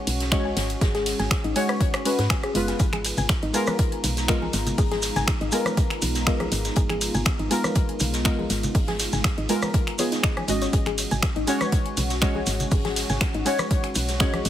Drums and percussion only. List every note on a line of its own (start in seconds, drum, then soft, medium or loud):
0.07 closed hi-hat medium
0.07 open hi-hat loud
0.07 ride medium
0.20 snare medium
0.20 closed hi-hat medium
0.32 finger snap loud
0.32 kick loud
0.32 snare loud
0.32 closed hi-hat medium
0.56 snare medium
0.56 closed hi-hat medium
0.56 open hi-hat medium
0.56 ride medium
0.70 closed hi-hat medium
0.81 kick loud
0.81 snare medium
0.81 closed hi-hat medium
0.95 snare medium
0.95 closed hi-hat soft
1.06 snare medium
1.06 closed hi-hat medium
1.06 open hi-hat loud
1.06 ride medium
1.20 snare soft
1.20 closed hi-hat soft
1.31 finger snap loud
1.31 kick loud
1.31 snare loud
1.31 closed hi-hat medium
1.31 closed hi-hat loud
1.44 closed hi-hat soft
1.56 closed hi-hat medium
1.56 open hi-hat medium
1.56 ride medium
1.69 cross-stick medium
1.69 closed hi-hat soft
1.81 kick loud
1.81 closed hi-hat medium
1.94 finger snap soft
1.94 cross-stick medium
1.94 closed hi-hat soft
2.05 closed hi-hat medium
2.05 open hi-hat loud
2.05 ride medium
2.19 snare medium
2.19 closed hi-hat medium
2.30 finger snap loud
2.30 kick loud
2.30 snare loud
2.30 closed hi-hat medium
2.43 cross-stick medium
2.43 closed hi-hat soft
2.55 closed hi-hat medium
2.55 open hi-hat medium
2.55 ride medium
2.68 snare soft
2.68 closed hi-hat medium
2.79 kick loud
2.79 closed hi-hat medium
2.79 maracas soft
2.93 finger snap soft
2.93 closed hi-hat soft
2.93 high conga medium
3.05 closed hi-hat medium
3.05 open hi-hat loud
3.05 ride medium
3.05 maracas medium
3.17 closed hi-hat soft
3.17 low conga loud
3.17 maracas medium
3.29 finger snap loud
3.29 kick loud
3.29 snare loud
3.29 closed hi-hat medium
3.29 high conga medium
3.29 maracas soft
3.43 closed hi-hat soft
3.54 closed hi-hat medium
3.54 open hi-hat medium
3.54 ride medium
3.54 maracas medium
3.66 cross-stick medium
3.66 closed hi-hat soft
3.66 high conga medium
3.66 maracas soft
3.79 kick loud
3.79 closed hi-hat medium
3.79 maracas soft
3.92 closed hi-hat soft
4.04 closed hi-hat medium
4.04 open hi-hat loud
4.04 ride medium
4.04 high conga medium
4.04 low conga medium
4.04 maracas medium
4.17 snare medium
4.17 closed hi-hat medium
4.17 maracas soft
4.28 finger snap loud
4.28 kick loud
4.28 snare loud
4.28 closed hi-hat medium
4.28 maracas soft
4.42 high conga loud
4.53 snare soft
4.53 closed hi-hat medium
4.53 open hi-hat medium
4.53 ride medium
4.53 muted conga medium
4.53 maracas loud
4.67 closed hi-hat medium
4.67 low conga medium
4.67 maracas medium
4.78 kick loud
4.78 closed hi-hat medium
4.78 open hi-hat medium
4.78 muted conga medium
4.78 maracas soft
4.91 snare soft
4.91 closed hi-hat soft
4.91 high conga medium
5.02 snare medium
5.02 closed hi-hat medium
5.02 open hi-hat loud
5.02 ride medium
5.02 maracas loud
5.16 snare soft
5.16 closed hi-hat soft
5.16 low conga loud
5.16 maracas medium
5.27 finger snap loud
5.27 kick loud
5.27 snare loud
5.27 closed hi-hat medium
5.27 high conga medium
5.27 maracas soft
5.41 closed hi-hat soft
5.52 closed hi-hat medium
5.52 open hi-hat loud
5.52 ride medium
5.52 maracas loud
5.65 cross-stick medium
5.65 closed hi-hat soft
5.65 high conga medium
5.65 maracas soft
5.77 kick loud
5.77 closed hi-hat medium
5.77 maracas soft
5.90 finger snap soft
5.90 closed hi-hat soft
6.02 closed hi-hat medium
6.02 open hi-hat loud
6.02 ride medium
6.02 high conga medium
6.02 maracas medium
6.15 snare medium
6.15 closed hi-hat medium
6.15 maracas soft
6.27 finger snap loud
6.27 kick loud
6.27 snare loud
6.27 closed hi-hat medium
6.27 maracas soft
6.40 cross-stick medium
6.40 closed hi-hat soft
6.40 high conga loud
6.52 closed hi-hat medium
6.52 open hi-hat loud
6.52 ride medium
6.52 maracas medium
6.65 snare soft
6.65 closed hi-hat medium
6.65 maracas medium
6.75 kick loud
6.75 closed hi-hat medium
6.75 maracas soft
6.90 finger snap soft
6.90 closed hi-hat soft
6.90 high conga loud
7.01 closed hi-hat medium
7.01 open hi-hat loud
7.01 ride medium
7.01 maracas loud
7.14 closed hi-hat soft
7.14 low conga medium
7.14 maracas medium
7.25 finger snap loud
7.25 kick loud
7.25 snare loud
7.25 closed hi-hat loud
7.25 closed hi-hat medium
7.25 high conga medium
7.25 maracas soft
7.39 closed hi-hat soft
7.51 closed hi-hat medium
7.51 open hi-hat loud
7.51 ride medium
7.51 maracas medium
7.64 cross-stick medium
7.64 closed hi-hat soft
7.64 high conga medium
7.64 maracas medium
7.75 kick loud
7.75 closed hi-hat medium
7.75 maracas soft
7.89 closed hi-hat soft
8.00 closed hi-hat medium
8.00 open hi-hat loud
8.00 ride medium
8.00 high conga medium
8.00 low conga medium
8.00 maracas loud
8.13 snare medium
8.13 closed hi-hat medium
8.13 maracas medium
8.25 finger snap loud
8.25 kick loud
8.25 snare loud
8.25 closed hi-hat medium
8.25 maracas soft
8.39 high conga loud
8.49 snare soft
8.49 closed hi-hat medium
8.49 open hi-hat loud
8.49 ride medium
8.49 muted conga medium
8.49 maracas medium
8.63 closed hi-hat soft
8.63 low conga loud
8.63 maracas medium
8.75 kick loud
8.75 closed hi-hat medium
8.75 open hi-hat medium
8.75 muted conga medium
8.75 maracas soft
8.87 snare medium
8.87 closed hi-hat soft
8.87 high conga loud
8.99 snare soft
8.99 closed hi-hat medium
8.99 open hi-hat loud
8.99 ride medium
8.99 maracas loud
9.12 snare soft
9.12 closed hi-hat soft
9.12 low conga loud
9.12 maracas medium
9.24 finger snap loud
9.24 kick loud
9.24 snare loud
9.24 closed hi-hat medium
9.24 high conga medium
9.24 maracas soft
9.38 closed hi-hat soft
9.49 closed hi-hat medium
9.49 open hi-hat loud
9.49 ride medium
9.49 maracas loud
9.62 cross-stick medium
9.62 closed hi-hat soft
9.62 high conga loud
9.62 maracas medium
9.74 kick loud
9.74 closed hi-hat medium
9.74 maracas soft
9.87 finger snap soft
9.87 closed hi-hat soft
9.98 closed hi-hat medium
9.98 open hi-hat loud
9.98 ride medium
9.98 high conga medium
9.98 maracas medium
10.12 snare medium
10.12 closed hi-hat medium
10.12 maracas medium
10.23 finger snap loud
10.23 kick loud
10.23 snare loud
10.23 closed hi-hat medium
10.23 closed hi-hat loud
10.23 maracas soft
10.37 cross-stick medium
10.37 closed hi-hat soft
10.37 high conga medium
10.48 closed hi-hat medium
10.48 open hi-hat loud
10.48 ride medium
10.48 maracas loud
10.62 snare soft
10.62 closed hi-hat medium
10.62 maracas medium
10.73 kick loud
10.73 closed hi-hat medium
10.73 maracas soft
10.86 finger snap soft
10.86 closed hi-hat soft
10.86 high conga medium
10.98 closed hi-hat medium
10.98 open hi-hat loud
10.98 ride medium
10.98 maracas loud
11.11 closed hi-hat soft
11.11 low conga loud
11.11 maracas medium
11.23 finger snap loud
11.23 kick loud
11.23 snare loud
11.23 closed hi-hat medium
11.23 high conga medium
11.23 maracas soft
11.36 closed hi-hat soft
11.47 closed hi-hat medium
11.47 open hi-hat loud
11.47 ride medium
11.47 maracas loud
11.61 cross-stick medium
11.61 closed hi-hat soft
11.61 high conga loud
11.61 maracas medium
11.72 kick loud
11.72 closed hi-hat medium
11.72 maracas soft
11.86 closed hi-hat soft
11.97 closed hi-hat medium
11.97 open hi-hat loud
11.97 ride medium
11.97 high conga medium
11.97 low conga medium
11.97 maracas medium
12.09 snare medium
12.09 closed hi-hat soft
12.09 maracas medium
12.21 finger snap loud
12.21 kick loud
12.21 snare loud
12.21 closed hi-hat medium
12.21 maracas soft
12.35 high conga medium
12.46 snare medium
12.46 closed hi-hat medium
12.46 open hi-hat medium
12.46 ride medium
12.46 muted conga medium
12.46 maracas loud
12.60 closed hi-hat medium
12.60 low conga medium
12.60 maracas medium
12.71 kick loud
12.71 closed hi-hat medium
12.71 open hi-hat medium
12.71 muted conga medium
12.71 maracas soft
12.85 snare medium
12.85 closed hi-hat soft
12.85 high conga medium
12.96 snare medium
12.96 closed hi-hat medium
12.96 open hi-hat loud
12.96 ride medium
12.96 maracas medium
13.09 snare soft
13.09 closed hi-hat soft
13.09 low conga medium
13.09 maracas soft
13.21 finger snap loud
13.21 kick loud
13.21 snare loud
13.21 closed hi-hat medium
13.21 high conga medium
13.21 maracas soft
13.34 closed hi-hat soft
13.46 closed hi-hat medium
13.46 open hi-hat medium
13.46 ride medium
13.46 maracas medium
13.58 cross-stick medium
13.58 closed hi-hat soft
13.58 high conga medium
13.58 maracas soft
13.71 kick loud
13.71 closed hi-hat medium
13.71 maracas soft
13.83 finger snap soft
13.83 closed hi-hat soft
13.95 closed hi-hat medium
13.95 open hi-hat loud
13.95 ride medium
13.95 high conga medium
13.95 maracas medium
14.08 snare medium
14.08 closed hi-hat medium
14.08 maracas medium
14.20 finger snap loud
14.20 kick loud
14.20 snare loud
14.20 closed hi-hat medium
14.20 maracas soft
14.34 cross-stick medium
14.34 closed hi-hat soft
14.34 high conga loud
14.45 closed hi-hat medium
14.45 open hi-hat medium
14.45 ride medium
14.45 maracas medium